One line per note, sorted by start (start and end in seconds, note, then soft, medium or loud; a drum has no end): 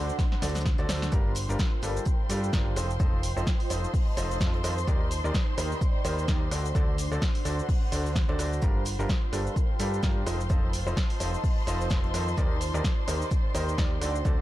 0.00 0.11 D2 medium
0.00 0.13 D3 medium
0.00 1.79 D4 medium
0.00 0.13 F#4 medium
0.00 0.13 A4 medium
0.00 0.13 C5 medium
0.00 1.11 C5 medium
0.00 1.79 C5 medium
0.00 0.13 D5 medium
0.00 1.12 F#5 medium
0.00 1.11 C6 medium
0.09 shaker soft
0.19 kick loud
0.19 snare loud
0.19 snare medium
0.19 shaker medium
0.19 shaker soft
0.32 snare medium
0.42 0.76 D2 medium
0.42 0.60 D3 medium
0.42 0.60 F#4 medium
0.42 0.60 A4 medium
0.42 0.60 C5 medium
0.42 0.60 D5 medium
0.42 snare medium
0.42 open hi-hat loud
0.42 shaker medium
0.48 snare medium
0.48 shaker medium
0.55 snare medium
0.55 shaker medium
0.55 shaker soft
0.60 snare medium
0.60 shaker medium
0.66 kick loud
0.66 snare medium
0.66 shaker soft
0.78 0.87 D2 loud
0.78 0.87 D3 medium
0.78 0.87 F#4 medium
0.78 0.87 A4 medium
0.78 0.87 C5 medium
0.78 0.87 D5 loud
0.78 snare soft
0.78 shaker medium
0.89 1.10 D2 medium
0.89 1.10 F#4 medium
0.89 1.10 A4 medium
0.89 1.10 C5 medium
0.89 1.10 D5 loud
0.89 snare loud
0.89 open hi-hat loud
0.89 shaker medium
1.02 snare medium
1.02 shaker soft
1.12 1.46 G1 loud
1.12 1.31 G3 medium
1.12 1.31 D4 medium
1.12 1.31 F4 medium
1.12 5.54 F4 medium
1.12 1.31 G4 medium
1.12 1.31 A#4 loud
1.12 8.61 C5 medium
1.12 8.61 C6 medium
1.12 kick loud
1.12 shaker medium
1.12 shaker soft
1.30 3.62 G5 medium
1.35 open hi-hat loud
1.35 shaker medium
1.37 shaker medium
1.45 2.76 A#4 medium
1.49 1.56 G1 loud
1.49 1.59 G3 medium
1.49 1.59 D4 medium
1.49 1.59 F4 medium
1.49 1.59 G4 medium
1.49 1.59 A#4 medium
1.49 shaker soft
1.59 kick loud
1.59 snare loud
1.59 shaker medium
1.59 shaker soft
1.82 1.99 G1 medium
1.82 2.01 G3 medium
1.82 2.01 D4 medium
1.82 2.01 F4 medium
1.82 2.01 G4 medium
1.82 2.01 A4 medium
1.82 cross-stick medium
1.82 snare soft
1.82 open hi-hat loud
1.82 shaker medium
1.97 shaker soft
2.05 kick loud
2.05 shaker medium
2.07 shaker soft
2.29 2.51 G2 medium
2.29 2.48 G3 loud
2.29 2.48 D4 medium
2.29 2.48 F4 medium
2.29 2.48 G4 medium
2.29 2.48 A4 loud
2.29 open hi-hat loud
2.29 shaker medium
2.44 shaker soft
2.53 2.74 G1 loud
2.53 2.71 D4 medium
2.53 2.71 F4 medium
2.53 2.71 G4 medium
2.53 2.71 A#4 medium
2.53 kick loud
2.53 snare loud
2.53 shaker medium
2.53 shaker soft
2.76 2.98 F1 medium
2.76 2.89 F3 medium
2.76 2.89 D#4 medium
2.76 2.89 F4 medium
2.76 2.89 A4 medium
2.76 2.89 C5 medium
2.76 cross-stick medium
2.76 open hi-hat loud
2.76 shaker medium
2.90 shaker soft
3.00 3.34 F1 loud
3.00 3.18 F3 medium
3.00 3.18 D#4 medium
3.00 3.18 F4 medium
3.00 3.18 A4 medium
3.00 3.18 C5 loud
3.00 kick loud
3.00 shaker medium
3.00 shaker soft
3.19 4.87 D#5 medium
3.23 open hi-hat loud
3.23 shaker medium
3.37 3.44 F1 loud
3.37 3.46 F3 medium
3.37 3.46 D#4 medium
3.37 3.46 F4 medium
3.37 3.46 A4 medium
3.37 3.46 C5 loud
3.37 shaker soft
3.46 kick loud
3.46 snare loud
3.46 shaker medium
3.46 shaker soft
3.60 snare soft
3.60 open hi-hat medium
3.70 3.86 F1 loud
3.70 3.88 F3 medium
3.70 3.88 D#4 medium
3.70 3.88 F4 medium
3.70 3.88 A4 medium
3.70 3.88 C5 medium
3.70 5.54 A5 medium
3.70 open hi-hat loud
3.70 shaker medium
3.84 shaker soft
3.94 kick loud
3.94 open hi-hat medium
3.94 shaker soft
4.17 4.38 F1 loud
4.17 4.35 F3 loud
4.17 4.35 D#4 medium
4.17 4.35 F4 medium
4.17 4.35 A4 medium
4.17 4.35 C5 loud
4.17 open hi-hat loud
4.17 shaker medium
4.31 shaker soft
4.41 4.62 F2 loud
4.41 4.59 F3 medium
4.41 4.59 D#4 medium
4.41 4.59 F4 medium
4.41 4.59 A4 medium
4.41 4.59 C5 medium
4.41 kick loud
4.41 snare loud
4.41 shaker medium
4.41 shaker soft
4.54 closed hi-hat soft
4.64 4.85 F2 medium
4.64 4.76 D#3 medium
4.64 4.76 D#4 medium
4.64 4.76 F4 medium
4.64 4.76 A4 medium
4.64 4.76 C5 medium
4.64 cross-stick medium
4.64 open hi-hat loud
4.64 shaker medium
4.78 shaker soft
4.87 5.21 D#2 loud
4.87 5.06 D#3 loud
4.87 6.51 D#4 medium
4.87 5.06 D#4 medium
4.87 5.06 G4 medium
4.87 5.06 A#4 medium
4.87 5.06 D5 loud
4.87 kick loud
4.87 shaker medium
4.87 shaker soft
5.11 open hi-hat loud
5.11 shaker medium
5.17 6.51 G5 medium
5.24 5.32 D#2 loud
5.24 5.34 D#3 medium
5.24 5.34 D#4 medium
5.24 5.34 G4 medium
5.24 5.34 A#4 medium
5.24 5.34 D5 loud
5.24 shaker soft
5.34 kick loud
5.34 snare loud
5.34 shaker medium
5.34 shaker soft
5.45 7.37 D5 medium
5.58 5.74 D#2 medium
5.58 5.76 D#3 medium
5.58 5.76 D#4 medium
5.58 5.76 G4 medium
5.58 5.76 A#4 medium
5.58 5.76 C5 medium
5.58 cross-stick medium
5.58 snare soft
5.58 open hi-hat loud
5.58 shaker medium
5.72 shaker soft
5.81 kick loud
5.81 shaker medium
5.81 shaker soft
6.04 6.26 D#2 medium
6.04 6.23 D#3 loud
6.04 6.23 D#4 medium
6.04 6.23 G4 medium
6.04 6.23 A#4 medium
6.04 6.23 C5 loud
6.04 open hi-hat loud
6.04 shaker medium
6.19 shaker soft
6.28 6.49 D#2 loud
6.28 6.46 D#4 medium
6.28 6.46 G4 medium
6.28 6.46 A#4 medium
6.28 kick loud
6.28 snare loud
6.28 shaker medium
6.28 shaker soft
6.51 6.73 D2 medium
6.51 6.64 D3 medium
6.51 9.29 D4 medium
6.51 6.64 F#4 medium
6.51 6.64 A4 medium
6.51 6.64 C5 medium
6.51 6.64 D5 medium
6.51 cross-stick medium
6.51 open hi-hat loud
6.51 shaker medium
6.65 shaker soft
6.75 7.09 D2 loud
6.75 6.93 D3 loud
6.75 6.93 F#4 medium
6.75 6.93 A4 medium
6.75 6.93 C5 medium
6.75 6.93 D5 loud
6.75 kick loud
6.75 shaker loud
6.75 shaker soft
6.94 9.29 C5 medium
6.98 open hi-hat loud
6.98 shaker medium
7.11 7.19 D2 loud
7.11 7.21 D3 medium
7.11 7.21 F#4 medium
7.11 7.21 A4 medium
7.11 7.21 C5 medium
7.11 7.21 D5 loud
7.11 shaker soft
7.22 8.62 F#5 medium
7.22 kick loud
7.22 snare loud
7.22 shaker medium
7.22 shaker soft
7.35 snare soft
7.35 open hi-hat medium
7.45 7.61 D2 medium
7.45 7.63 D3 medium
7.45 7.63 F#4 medium
7.45 7.63 A4 medium
7.45 7.63 C5 medium
7.45 7.63 D5 medium
7.45 open hi-hat loud
7.45 shaker medium
7.59 shaker soft
7.69 kick loud
7.69 open hi-hat medium
7.69 shaker soft
7.92 8.26 D2 medium
7.92 8.10 D3 medium
7.92 8.10 F#4 medium
7.92 8.10 A4 medium
7.92 8.10 C5 medium
7.92 8.10 D5 medium
7.92 open hi-hat loud
7.92 shaker medium
8.06 shaker soft
8.15 kick loud
8.15 snare loud
8.15 shaker medium
8.15 shaker soft
8.29 8.37 D2 loud
8.29 8.37 D3 medium
8.29 8.37 F#4 medium
8.29 8.37 A4 medium
8.29 8.37 C5 medium
8.29 8.37 D5 loud
8.29 closed hi-hat soft
8.39 8.60 D2 medium
8.39 8.60 F#4 medium
8.39 8.60 A4 medium
8.39 8.60 C5 medium
8.39 8.60 D5 loud
8.39 cross-stick medium
8.39 open hi-hat loud
8.39 shaker medium
8.53 shaker soft
8.62 8.96 G1 loud
8.62 8.81 G3 loud
8.62 8.81 D4 medium
8.62 13.04 F4 medium
8.62 8.81 F4 medium
8.62 8.81 G4 medium
8.62 8.81 A#4 loud
8.62 14.41 C5 medium
8.62 14.41 C6 medium
8.62 kick loud
8.62 shaker loud
8.62 shaker soft
8.85 open hi-hat loud
8.85 shaker medium
8.99 9.06 G1 loud
8.99 9.09 G3 medium
8.99 9.09 D4 medium
8.99 9.09 F4 medium
8.99 9.09 G4 medium
8.99 9.09 A#4 loud
8.99 shaker soft
9.09 kick loud
9.09 snare loud
9.09 shaker medium
9.09 shaker soft
9.17 10.26 A#4 medium
9.33 9.49 G1 medium
9.33 9.51 G3 medium
9.33 9.51 D4 medium
9.33 9.51 F4 medium
9.33 9.51 G4 medium
9.33 9.51 A4 medium
9.33 11.12 G5 medium
9.33 cross-stick medium
9.33 snare soft
9.33 open hi-hat loud
9.33 shaker medium
9.47 shaker soft
9.56 kick loud
9.56 shaker medium
9.56 shaker soft
9.79 10.01 G2 medium
9.79 9.98 G3 loud
9.79 9.98 D4 medium
9.79 9.98 F4 medium
9.79 9.98 G4 medium
9.79 9.98 A4 loud
9.79 open hi-hat loud
9.79 shaker medium
9.94 shaker soft
10.03 10.24 G2 loud
10.03 10.21 D4 medium
10.03 10.21 F4 medium
10.03 10.21 G4 medium
10.03 10.21 A#4 medium
10.03 kick loud
10.03 snare loud
10.03 shaker loud
10.03 shaker soft
10.26 10.48 F1 loud
10.26 10.39 F3 medium
10.26 10.39 D#4 medium
10.26 10.39 F4 medium
10.26 10.39 A4 medium
10.26 10.39 C5 medium
10.26 cross-stick medium
10.26 open hi-hat loud
10.26 shaker medium
10.41 shaker soft
10.50 10.68 F3 loud
10.50 10.68 D#4 medium
10.50 10.68 F4 medium
10.50 10.68 A4 medium
10.50 10.68 C5 loud
10.50 kick loud
10.50 shaker medium
10.50 shaker soft
10.54 13.04 A5 medium
10.73 open hi-hat loud
10.73 shaker medium
10.85 10.94 F1 loud
10.85 10.96 F3 medium
10.85 10.96 D#4 medium
10.85 10.96 F4 medium
10.85 10.96 A4 medium
10.85 10.96 C5 loud
10.85 12.37 D#5 medium
10.85 shaker soft
10.96 kick loud
10.96 snare loud
10.96 shaker loud
10.96 shaker soft
11.10 snare soft
11.10 open hi-hat medium
11.20 11.36 F1 loud
11.20 11.38 F3 medium
11.20 11.38 D#4 medium
11.20 11.38 F4 medium
11.20 11.38 A4 medium
11.20 11.38 C5 medium
11.20 open hi-hat loud
11.20 shaker medium
11.34 shaker soft
11.44 kick loud
11.44 open hi-hat medium
11.44 shaker soft
11.67 11.88 F1 loud
11.67 11.85 F3 medium
11.67 11.85 D#4 medium
11.67 11.85 F4 medium
11.67 11.85 A4 medium
11.67 11.85 C5 loud
11.67 open hi-hat loud
11.67 shaker medium
11.81 shaker soft
11.90 12.09 F3 medium
11.90 12.09 D#4 medium
11.90 12.09 F4 medium
11.90 12.09 A4 medium
11.90 12.09 C5 medium
11.90 kick loud
11.90 snare loud
11.90 shaker medium
11.90 shaker soft
12.04 closed hi-hat soft
12.14 12.35 F2 loud
12.14 12.26 D#3 medium
12.14 12.26 D#4 medium
12.14 12.26 F4 medium
12.14 12.26 A4 medium
12.14 12.26 C5 medium
12.14 cross-stick medium
12.14 open hi-hat loud
12.14 shaker medium
12.28 shaker soft
12.37 12.71 D#2 loud
12.37 12.56 D#3 loud
12.37 14.01 D#4 medium
12.37 12.56 D#4 medium
12.37 12.56 G4 medium
12.37 12.56 A#4 medium
12.37 12.56 D5 loud
12.37 kick loud
12.37 shaker medium
12.37 shaker soft
12.49 14.41 D5 medium
12.61 open hi-hat loud
12.61 shaker medium
12.74 12.81 D#2 loud
12.74 12.84 D#3 medium
12.74 12.84 D#4 medium
12.74 12.84 G4 medium
12.74 12.84 A#4 medium
12.74 12.84 D5 medium
12.74 shaker soft
12.84 kick loud
12.84 snare loud
12.84 shaker medium
12.84 shaker soft
13.08 13.24 D#2 medium
13.08 13.26 D#3 medium
13.08 13.26 D#4 medium
13.08 13.26 G4 medium
13.08 13.26 A#4 medium
13.08 13.26 C5 medium
13.08 cross-stick medium
13.08 snare soft
13.08 open hi-hat loud
13.08 shaker medium
13.12 14.02 G5 medium
13.22 shaker soft
13.31 kick loud
13.31 shaker loud
13.31 shaker soft
13.54 13.76 D#2 medium
13.54 13.73 D#3 medium
13.54 13.73 D#4 medium
13.54 13.73 G4 medium
13.54 13.73 A#4 medium
13.54 13.73 C5 loud
13.54 open hi-hat loud
13.54 shaker medium
13.69 shaker soft
13.78 13.99 D#2 medium
13.78 13.96 D#4 medium
13.78 13.96 G4 medium
13.78 13.96 A#4 medium
13.78 13.96 D5 medium
13.78 kick loud
13.78 snare loud
13.78 shaker medium
13.78 shaker soft
14.01 14.23 D2 medium
14.01 14.14 D3 medium
14.01 14.41 D4 medium
14.01 14.14 F#4 medium
14.01 14.14 A4 medium
14.01 14.14 C5 medium
14.01 14.14 D5 medium
14.01 cross-stick medium
14.01 open hi-hat loud
14.01 shaker medium
14.16 shaker medium
14.25 14.41 D2 loud
14.25 14.41 D3 loud
14.25 14.41 F#4 medium
14.25 14.41 A4 medium
14.25 14.41 C5 medium
14.25 14.41 D5 loud
14.25 kick loud
14.25 shaker loud
14.25 shaker soft